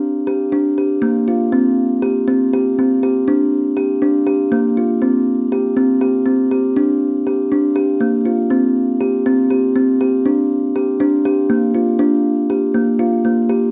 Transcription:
0.00 0.13 D4 medium
0.27 0.45 G4 medium
0.52 0.70 D4 medium
0.78 0.95 G4 medium
1.02 1.20 A#3 medium
1.28 1.45 F4 medium
1.52 1.87 C4 medium
2.02 2.20 G4 medium
2.28 2.45 C4 medium
2.54 2.71 G4 medium
2.79 2.96 C4 medium
3.03 3.20 G4 medium
3.28 3.62 D4 medium
3.77 3.94 G4 medium
4.02 4.19 D4 medium
4.27 4.44 G4 medium
4.52 4.69 A#3 medium
4.77 4.95 F4 medium
5.02 5.37 C4 medium
5.52 5.69 G4 medium
5.77 5.94 C4 medium
6.01 6.19 G4 medium
6.26 6.43 C4 medium
6.51 6.69 G4 medium
6.76 7.11 D4 medium
7.27 7.44 G4 medium
7.52 7.69 D4 medium
7.76 7.93 G4 medium
8.00 8.18 A#3 medium
8.25 8.43 F4 medium
8.50 8.86 C4 medium
9.01 9.18 G4 medium
9.26 9.43 C4 medium
9.50 9.68 G4 medium
9.76 9.93 C4 medium
10.01 10.18 G4 medium
10.26 10.61 D4 medium
10.76 10.93 G4 medium
11.00 11.18 D4 medium
11.25 11.43 G4 medium
11.50 11.67 A#3 medium
11.75 11.92 F4 medium
11.99 12.35 D4 medium
12.50 12.67 G4 medium
12.74 12.92 A#3 medium
12.99 13.17 F4 medium
13.25 13.42 A#3 medium
13.49 13.67 G4 medium

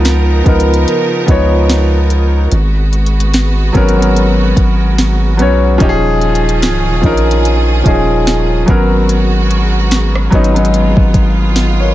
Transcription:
0.00 0.42 C#2 loud
0.00 2.48 C#3 medium
0.00 0.44 F3 loud
0.00 0.46 B3 loud
0.00 2.48 B3 medium
0.00 0.47 D#4 loud
0.00 2.48 D#4 medium
0.00 2.48 F4 medium
0.00 0.48 A#4 loud
0.00 2.48 A#4 medium
0.05 snare loud
0.05 closed hi-hat medium
0.44 0.86 C#2 loud
0.44 1.03 F3 medium
0.44 1.04 B3 medium
0.44 1.05 D#4 medium
0.44 kick loud
0.44 closed hi-hat soft
0.48 1.05 A#4 loud
0.60 closed hi-hat medium
0.74 closed hi-hat medium
0.88 closed hi-hat medium
1.26 2.48 C#2 loud
1.26 2.41 F3 medium
1.26 2.42 B3 medium
1.26 2.42 D#4 medium
1.26 kick medium
1.26 closed hi-hat medium
1.31 2.43 C#5 medium
1.70 snare loud
1.70 closed hi-hat medium
2.10 closed hi-hat medium
2.52 3.71 G#1 loud
2.52 5.77 G#3 medium
2.52 5.77 B3 medium
2.52 5.77 F#4 medium
2.52 closed hi-hat medium
2.93 closed hi-hat soft
3.06 closed hi-hat soft
3.20 closed hi-hat medium
3.34 snare loud
3.34 closed hi-hat medium
3.73 4.54 G#1 loud
3.73 3.90 F#3 medium
3.73 3.91 B3 medium
3.73 3.91 C#4 medium
3.73 kick medium
3.73 closed hi-hat soft
3.77 3.92 A#4 loud
3.89 closed hi-hat medium
3.96 4.93 F#3 medium
3.96 4.93 B3 medium
3.96 4.94 C#4 medium
4.01 4.95 A#4 medium
4.01 closed hi-hat medium
4.17 closed hi-hat medium
4.57 5.41 G#1 loud
4.57 kick medium
4.57 closed hi-hat medium
4.98 snare loud
4.98 closed hi-hat medium
5.37 5.78 B1 loud
5.37 5.68 F#3 medium
5.37 5.69 B3 medium
5.37 5.70 C#4 medium
5.37 closed hi-hat medium
5.42 5.70 C#5 loud
5.78 6.65 D#1 loud
5.78 8.65 D#3 medium
5.78 6.63 F3 loud
5.78 6.64 C#4 loud
5.78 8.65 C#4 medium
5.78 6.65 D#4 loud
5.78 8.65 F4 medium
5.78 8.65 G#4 medium
5.78 kick loud
5.78 closed hi-hat medium
5.83 5.89 G4 loud
5.89 6.69 G#4 loud
6.21 closed hi-hat soft
6.35 closed hi-hat soft
6.49 closed hi-hat medium
6.62 6.88 C#1 loud
6.62 snare loud
6.62 closed hi-hat medium
6.87 7.03 D#1 loud
7.01 7.82 A#1 loud
7.01 7.61 F3 medium
7.01 7.62 C#4 medium
7.01 7.62 D#4 medium
7.01 kick loud
7.01 closed hi-hat soft
7.06 7.63 A#4 loud
7.17 closed hi-hat medium
7.31 closed hi-hat medium
7.45 closed hi-hat medium
7.83 8.65 D#1 medium
7.83 8.67 F3 medium
7.83 8.67 C#4 medium
7.83 8.68 D#4 medium
7.83 kick medium
7.83 closed hi-hat medium
7.88 8.69 G#4 medium
8.27 snare loud
8.27 closed hi-hat medium
8.66 10.29 G#1 medium
8.66 10.00 F#3 medium
8.66 11.94 G#3 medium
8.66 10.00 B3 medium
8.66 11.94 B3 medium
8.66 10.01 C#4 medium
8.66 10.31 F#4 medium
8.66 kick loud
8.66 closed hi-hat medium
8.70 10.02 A#4 loud
9.09 closed hi-hat medium
9.51 closed hi-hat medium
9.91 snare loud
9.91 closed hi-hat medium
10.15 cross-stick medium
10.30 10.95 G#1 loud
10.30 10.48 F#3 medium
10.30 10.48 B3 medium
10.30 10.49 C#4 medium
10.30 11.94 F4 medium
10.30 kick loud
10.30 closed hi-hat medium
10.35 10.50 D#4 medium
10.44 closed hi-hat medium
10.54 11.50 F#3 medium
10.54 11.51 B3 medium
10.54 11.52 C#4 medium
10.54 closed hi-hat medium
10.58 11.53 D#4 medium
10.65 closed hi-hat medium
10.74 closed hi-hat medium
10.97 11.14 G#1 loud
10.97 kick loud
11.14 11.94 G#1 loud
11.14 kick loud
11.14 closed hi-hat medium
11.56 snare loud
11.56 closed hi-hat medium
11.80 11.94 A#4 medium
11.80 11.94 C#5 medium

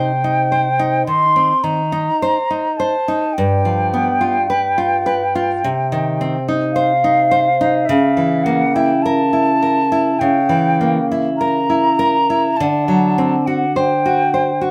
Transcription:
0.00 1.03 C3 medium
0.00 0.11 D#4 medium
0.00 0.39 C5 medium
0.00 1.06 G5 medium
0.24 0.67 D#4 soft
0.52 0.95 C5 soft
0.79 1.24 D#4 medium
1.07 1.52 D#3 soft
1.07 1.65 C6 medium
1.36 1.80 C4 soft
1.64 2.09 D#3 soft
1.64 2.79 A#5 medium
1.92 2.37 D#4 soft
2.22 2.66 C5 medium
2.50 2.94 D#4 soft
2.77 3.23 C5 medium
2.77 3.35 A5 medium
3.08 3.35 D#4 medium
3.33 6.47 G5 medium
3.38 5.58 G2 medium
3.65 4.08 F3 soft
3.94 4.36 B3 medium
4.21 4.49 F4 soft
4.50 4.93 B4 medium
4.78 5.22 F4 soft
5.06 5.50 B4 soft
5.35 5.62 F4 medium
5.64 7.85 C3 medium
5.92 6.36 D#3 soft
6.21 6.64 C4 soft
6.48 6.92 D#4 medium
6.72 7.20 C5 medium
6.72 7.87 F5 medium
7.04 7.48 D#4 soft
7.31 7.76 C5 medium
7.61 7.88 D#4 medium
7.85 10.16 C#3 medium
7.85 8.45 E5 medium
8.17 8.62 E3 soft
8.44 8.91 A#3 medium
8.44 8.76 F#5 medium
8.74 9.20 E4 medium
8.74 9.04 G5 medium
9.03 9.50 A#4 soft
9.03 10.21 A5 medium
9.33 9.78 E4 soft
9.63 10.08 A#4 soft
9.92 10.38 E4 medium
10.19 12.54 C#3 medium
10.19 11.06 G5 medium
10.49 10.97 E3 medium
10.81 11.28 A#3 soft
11.12 11.58 E4 soft
11.37 11.87 A#4 medium
11.37 12.58 A#5 medium
11.70 12.16 E4 soft
11.99 12.45 A#4 medium
12.30 12.58 E4 medium
12.57 14.71 D3 medium
12.57 13.48 A5 medium
12.88 13.35 F#3 soft
13.18 13.64 C4 medium
13.46 13.93 F#4 soft
13.46 13.78 F#5 medium
13.76 14.22 C5 soft
13.76 14.64 G5 medium
14.06 14.51 F#4 medium
14.34 14.71 C5 soft
14.61 14.71 F#4 soft

